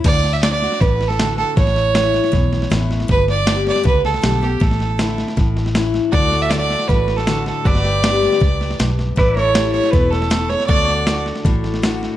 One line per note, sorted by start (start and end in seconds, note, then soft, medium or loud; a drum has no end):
0.04 0.66 D2 medium
0.04 0.42 D3 medium
0.04 0.35 D5 loud
0.04 kick loud
0.04 snare soft
0.04 crash medium
0.24 snare soft
0.33 0.42 E5 medium
0.43 0.61 D3 medium
0.43 0.62 A3 soft
0.43 0.62 D4 soft
0.43 0.62 F#4 medium
0.43 0.52 D5 medium
0.43 snare loud
0.43 hi-hat pedal medium
0.53 0.82 D5 medium
0.62 0.82 D4 soft
0.62 0.81 F#4 medium
0.62 snare soft
0.72 snare soft
0.81 1.42 A1 medium
0.81 1.53 A2 medium
0.81 1.09 B4 medium
0.81 kick loud
0.81 snare soft
1.01 snare soft
1.08 1.37 A4 medium
1.08 snare soft
1.20 1.55 D3 medium
1.20 1.56 A3 medium
1.20 1.56 D4 medium
1.20 1.56 F#4 medium
1.20 snare medium
1.20 hi-hat pedal medium
1.38 1.55 A4 medium
1.38 snare soft
1.57 2.19 A1 medium
1.57 2.29 A2 medium
1.57 2.67 C#5 medium
1.57 kick loud
1.57 snare soft
1.67 snare soft
1.76 snare soft
1.95 2.31 E3 soft
1.95 2.31 A3 medium
1.95 2.31 C#4 medium
1.95 2.32 E4 medium
1.95 snare loud
1.95 hi-hat pedal medium
2.14 snare soft
2.24 snare soft
2.32 2.65 B1 medium
2.32 3.04 E2 medium
2.32 kick medium
2.32 snare soft
2.52 snare soft
2.62 snare soft
2.70 3.03 A1 medium
2.70 3.06 E3 medium
2.70 3.07 A3 medium
2.70 3.07 C#4 medium
2.70 3.07 E4 medium
2.70 snare loud
2.70 hi-hat pedal medium
2.91 snare soft
3.00 snare soft
3.08 3.70 G1 medium
3.08 3.81 G2 medium
3.08 3.27 B4 loud
3.08 kick loud
3.08 snare soft
3.28 3.65 D5 medium
3.28 snare soft
3.46 3.82 D3 soft
3.46 3.83 G3 medium
3.46 3.83 B3 medium
3.46 3.83 G4 medium
3.46 snare loud
3.46 hi-hat pedal medium
3.67 3.85 D5 medium
3.67 snare soft
3.76 snare soft
3.83 4.18 C#2 medium
3.83 4.20 D3 medium
3.83 4.03 B4 medium
3.83 kick loud
3.83 snare soft
4.05 4.45 A4 medium
4.05 snare soft
4.14 snare soft
4.22 4.56 B1 medium
4.22 4.40 D3 medium
4.22 4.41 G3 medium
4.22 4.41 B3 medium
4.22 4.40 G4 medium
4.22 snare medium
4.22 hi-hat pedal medium
4.41 4.61 B3 soft
4.41 4.60 G4 soft
4.41 4.63 G4 medium
4.41 snare soft
4.60 5.22 A1 medium
4.60 5.33 A2 medium
4.60 5.18 A4 medium
4.60 kick loud
4.60 snare soft
4.71 snare soft
4.80 snare soft
4.98 5.34 D3 soft
4.98 5.35 A3 soft
4.98 5.35 D4 soft
4.98 5.35 E4 medium
4.98 snare medium
4.98 hi-hat pedal medium
5.18 snare soft
5.28 snare soft
5.37 5.98 A1 medium
5.37 6.09 A2 medium
5.37 kick loud
5.37 snare soft
5.57 snare soft
5.66 snare soft
5.75 6.11 E3 medium
5.75 6.11 A3 medium
5.75 6.11 C#4 medium
5.75 6.12 E4 medium
5.75 snare medium
5.75 hi-hat pedal medium
5.94 snare soft
6.12 6.74 D2 medium
6.12 6.51 D3 medium
6.12 7.63 F#4 medium
6.12 7.64 A4 medium
6.12 6.43 D5 loud
6.12 7.64 D5 medium
6.12 kick loud
6.12 snare soft
6.32 snare soft
6.42 6.51 E5 medium
6.50 6.88 D3 soft
6.50 6.88 A3 soft
6.50 6.88 D4 soft
6.50 6.88 F#4 medium
6.50 6.58 D5 medium
6.50 snare medium
6.50 hi-hat pedal medium
6.59 6.90 D5 medium
6.70 snare soft
6.79 snare soft
6.88 7.50 A1 medium
6.88 7.62 A2 medium
6.88 7.18 B4 medium
6.88 kick medium
6.88 snare soft
7.08 snare soft
7.16 7.45 A4 medium
7.16 snare soft
7.27 7.63 D3 medium
7.27 7.63 A3 medium
7.27 7.64 D4 medium
7.27 7.64 F#4 medium
7.27 snare medium
7.27 hi-hat pedal medium
7.46 7.69 A4 medium
7.46 snare soft
7.65 8.27 G1 medium
7.65 8.38 G2 medium
7.65 7.85 F#4 medium
7.65 9.17 B4 medium
7.65 8.80 D5 loud
7.65 9.17 D5 medium
7.65 kick loud
7.65 snare soft
7.75 snare soft
7.85 9.16 G4 medium
7.85 snare soft
8.03 8.39 D3 soft
8.03 8.39 G3 soft
8.03 8.39 B3 soft
8.03 8.40 G4 medium
8.03 snare loud
8.03 hi-hat pedal medium
8.23 snare soft
8.32 snare soft
8.40 8.74 C#2 medium
8.40 8.77 F#2 medium
8.40 kick loud
8.40 snare soft
8.61 snare soft
8.71 snare soft
8.79 9.12 B1 medium
8.79 9.15 G2 medium
8.79 snare medium
8.79 hi-hat pedal medium
8.99 snare soft
9.16 9.79 A1 medium
9.16 9.89 A2 medium
9.16 10.68 E4 medium
9.16 9.35 B4 medium
9.16 9.44 B4 medium
9.16 kick loud
9.16 snare soft
9.20 9.40 D5 medium
9.36 9.71 C#5 medium
9.36 snare soft
9.40 10.68 A4 medium
9.40 10.69 C#5 medium
9.54 9.91 E3 soft
9.54 9.91 G3 medium
9.54 9.91 C#4 medium
9.54 9.91 E4 soft
9.54 snare loud
9.54 hi-hat pedal medium
9.72 9.93 C#5 medium
9.72 snare soft
9.84 snare soft
9.91 10.55 E1 medium
9.91 10.29 B2 medium
9.91 10.12 B4 medium
9.91 kick loud
9.91 snare soft
10.10 10.51 A4 medium
10.10 snare soft
10.22 snare soft
10.30 10.67 C#3 medium
10.30 snare medium
10.30 hi-hat pedal medium
10.49 10.66 C#5 medium
10.49 snare soft
10.60 snare soft
10.67 11.31 D2 medium
10.67 11.05 D3 medium
10.67 12.17 F#4 medium
10.67 12.17 A4 medium
10.67 11.21 D5 loud
10.67 kick loud
10.67 snare soft
10.71 10.91 C#5 medium
10.88 12.17 D5 medium
10.88 snare soft
11.06 11.43 D3 soft
11.06 11.43 A3 medium
11.06 11.43 D4 soft
11.06 11.44 F#4 medium
11.06 snare medium
11.06 hi-hat pedal medium
11.26 snare soft
11.35 snare soft
11.45 12.06 A1 medium
11.45 12.17 A2 medium
11.45 kick loud
11.45 snare soft
11.64 snare soft
11.74 snare soft
11.82 12.17 D3 medium
11.82 12.17 A3 medium
11.82 12.17 D4 medium
11.82 12.17 F#4 medium
11.82 snare medium
11.82 hi-hat pedal medium
12.03 snare soft